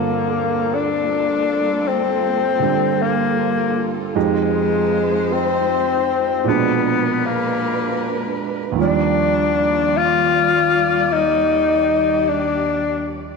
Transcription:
0.00 4.14 G2 soft
0.00 2.58 D3 soft
0.00 4.11 G3 medium
0.00 0.76 A#3 medium
0.00 4.11 A#3 medium
0.00 4.15 A#3 soft
0.00 4.11 C4 medium
0.00 4.15 C4 soft
0.00 4.16 F4 soft
0.00 6.42 F4 medium
0.00 4.11 A4 medium
0.00 4.17 A4 medium
0.00 4.17 F#5 soft
0.74 1.89 D4 medium
1.87 3.03 C4 medium
2.59 4.15 D3 soft
2.59 4.16 G3 soft
2.59 4.17 D4 soft
2.59 4.15 G4 soft
3.02 3.97 A#3 medium
4.13 6.46 F2 soft
4.13 6.44 F3 soft
4.13 6.43 G#3 medium
4.13 5.34 G#3 medium
4.13 6.45 G#3 soft
4.13 6.43 D#4 medium
4.13 6.47 D#4 soft
4.13 6.47 G4 medium
4.13 6.43 C5 medium
5.33 6.50 C4 medium
6.44 8.76 A#2 soft
6.44 8.77 F3 soft
6.44 8.74 G#3 medium
6.44 8.77 G#3 soft
6.44 8.74 D4 medium
6.44 8.74 A#4 medium
6.44 8.74 B4 medium
6.48 8.78 B2 soft
6.48 7.28 B3 medium
6.48 8.79 D4 medium
7.26 8.40 A#3 medium
8.72 13.37 D#2 medium
8.72 13.37 D#3 soft
8.78 13.37 F3 medium
8.78 13.36 G3 medium
8.78 13.37 G3 soft
8.78 9.99 D4 medium
8.78 11.06 F4 medium
8.78 13.37 D5 medium
8.84 13.37 D5 medium
9.97 11.14 F4 loud
11.09 12.30 D#4 medium
11.09 13.37 G4 medium
12.29 13.22 D4 medium

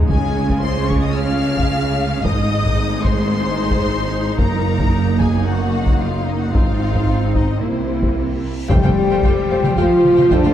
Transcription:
0.00 2.07 G#3 medium
0.00 2.20 G#3 medium
0.09 2.20 C#2 medium
0.09 2.20 C#3 medium
0.09 2.20 C#4 medium
0.09 2.07 C#4 medium
0.09 0.59 G#4 medium
0.09 0.59 G#5 medium
0.09 taiko medium
0.50 taiko medium
0.62 0.89 C5 medium
0.62 0.89 C6 loud
0.89 1.03 C#5 medium
0.89 1.02 C#6 medium
0.89 taiko medium
1.03 1.16 D#5 medium
1.03 1.16 D#6 medium
1.16 2.23 F5 medium
1.16 2.24 F6 loud
1.58 taiko medium
2.24 4.39 G#1 medium
2.24 4.39 G#2 medium
2.24 4.35 G#3 medium
2.24 4.36 G#3 medium
2.24 6.51 D#4 medium
2.24 3.05 D#5 medium
2.24 3.04 D#6 loud
2.24 taiko medium
2.65 taiko medium
3.03 4.39 C5 medium
3.03 4.38 C6 loud
3.03 taiko medium
3.71 taiko medium
4.37 6.55 F#1 medium
4.37 6.54 F#2 medium
4.37 6.50 A#3 medium
4.37 5.18 A#4 medium
4.37 5.18 A#5 medium
4.37 taiko medium
4.79 taiko medium
5.19 5.46 G#4 medium
5.19 5.47 G#5 medium
5.19 taiko medium
5.45 6.00 F#4 medium
5.45 6.00 F#5 medium
5.87 taiko medium
5.98 6.27 F4 medium
5.98 6.28 F5 medium
6.26 6.40 D#4 medium
6.26 6.41 D#5 medium
6.41 6.54 F#4 medium
6.41 6.55 F#5 medium
6.53 7.62 G#1 medium
6.53 7.62 G#2 medium
6.53 7.57 C4 medium
6.53 7.62 C4 medium
6.53 7.59 D#4 medium
6.53 7.58 D#4 medium
6.53 7.33 F4 medium
6.53 7.35 F5 medium
6.53 taiko medium
6.53 reverse cymbal medium
6.95 taiko medium
7.34 7.61 D#4 medium
7.34 7.62 D#5 medium
7.34 taiko medium
7.60 8.50 C2 soft
7.60 8.50 C3 soft
7.60 8.45 A#3 soft
7.60 8.43 A#3 soft
7.60 8.43 C4 soft
7.60 8.45 E4 soft
7.60 8.43 E4 soft
7.60 8.42 C5 medium
8.03 taiko medium
8.69 9.47 F2 medium
8.69 8.76 F2 medium
8.69 9.73 G3 medium
8.69 8.75 A3 medium
8.69 10.54 A3 medium
8.69 9.74 G4 medium
8.69 10.54 G4 medium
8.69 8.75 C5 medium
8.69 10.54 C5 medium
8.69 8.75 F5 medium
8.69 9.73 G5 medium
8.69 8.75 G5 medium
8.69 taiko loud
8.69 impact medium
8.73 10.54 F4 medium
8.83 8.89 F2 soft
8.83 8.89 A3 soft
8.83 8.89 C5 soft
8.83 8.89 F5 soft
8.83 8.89 G5 soft
8.83 taiko mid soft
9.10 9.16 F2 soft
9.10 9.16 A3 soft
9.10 9.16 C5 soft
9.10 9.16 F5 soft
9.10 9.16 G5 soft
9.23 9.30 F2 medium
9.23 9.30 A3 medium
9.23 9.30 C5 medium
9.23 9.29 F5 medium
9.23 9.29 G5 medium
9.23 taiko medium
9.50 9.56 F2 medium
9.50 9.57 A3 soft
9.50 9.56 C5 soft
9.50 9.57 C5 soft
9.50 9.56 F5 medium
9.64 9.70 F2 medium
9.64 9.71 A3 soft
9.64 9.71 C5 medium
9.64 9.70 F5 medium
9.64 9.70 G5 medium
9.64 taiko mid medium
9.77 9.84 F2 medium
9.77 10.31 F3 medium
9.77 9.84 A3 medium
9.77 10.32 F4 medium
9.77 9.84 C5 medium
9.77 9.83 F5 medium
9.77 10.32 F5 medium
9.77 9.83 G5 medium
9.77 taiko medium
10.04 taiko mid medium
10.16 10.24 F2 medium
10.16 10.23 F5 medium
10.16 10.22 G5 medium
10.16 taiko mid soft
10.20 10.25 A3 medium
10.20 10.26 C5 medium
10.30 10.37 F2 medium
10.30 10.54 D3 medium
10.30 10.37 A3 medium
10.30 10.54 D4 loud
10.30 10.37 C5 medium
10.30 10.54 D5 medium
10.30 10.36 F5 medium
10.30 10.36 G5 medium
10.30 taiko medium
10.44 10.51 F2 medium
10.44 10.51 A3 medium
10.44 10.50 C5 medium
10.44 10.50 F5 medium
10.44 10.49 G5 medium
10.44 taiko mid soft

